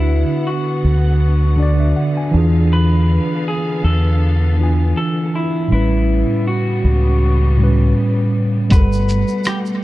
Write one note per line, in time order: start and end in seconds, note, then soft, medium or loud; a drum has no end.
0.00 0.23 D2 medium
0.00 0.80 D3 medium
0.00 5.67 D3 medium
0.00 2.31 B3 medium
0.00 0.81 D4 medium
0.00 0.49 E4 medium
0.00 0.82 F#4 medium
0.00 0.83 B4 medium
0.00 2.29 F#5 medium
0.47 1.92 F#4 medium
0.84 1.92 D2 medium
1.56 2.32 D3 medium
1.56 2.32 D4 medium
1.56 1.62 D5 medium
1.61 2.35 F#4 medium
1.61 2.36 D5 medium
1.80 1.95 E5 medium
1.96 2.16 F#5 medium
2.17 2.67 G#5 medium
2.31 3.18 E2 loud
2.31 3.53 E3 loud
2.31 5.68 B3 medium
2.31 3.54 D4 medium
2.31 5.68 F5 medium
2.36 3.55 F4 medium
2.36 3.56 G#4 loud
2.73 3.43 B4 loud
3.48 3.84 G#4 loud
3.84 4.92 E2 medium
3.84 4.55 A4 medium
4.57 5.41 E3 medium
4.57 5.42 D4 medium
4.61 5.43 F4 medium
4.61 5.44 G#5 medium
4.97 5.32 A4 loud
5.35 5.69 E4 medium
5.68 6.23 A1 loud
5.68 6.80 A2 medium
5.68 8.68 C#3 medium
5.68 6.81 G3 medium
5.68 8.68 G3 medium
5.68 8.68 B3 medium
5.68 6.82 C#4 medium
5.72 6.47 E4 loud
5.72 6.83 B4 medium
6.47 7.93 F#4 medium
6.84 7.92 C#2 medium
7.57 8.41 A2 medium
7.57 8.43 G3 medium
7.62 8.44 C#4 medium
7.62 8.45 B4 medium
8.70 9.23 G1 loud
8.70 9.84 B2 medium
8.70 9.81 G3 medium
8.70 9.84 A3 medium
8.70 9.47 B4 loud
8.70 9.82 F#5 medium
8.70 9.84 F#5 medium
8.70 kick loud
8.70 closed hi-hat medium
8.70 shaker medium
8.74 9.83 A4 medium
8.74 8.81 A#4 medium
8.83 9.84 B4 loud
8.93 shaker medium
9.09 shaker soft
9.28 shaker medium
9.44 9.58 G4 medium
9.44 cross-stick loud
9.44 closed hi-hat medium
9.44 shaker medium
9.66 shaker soft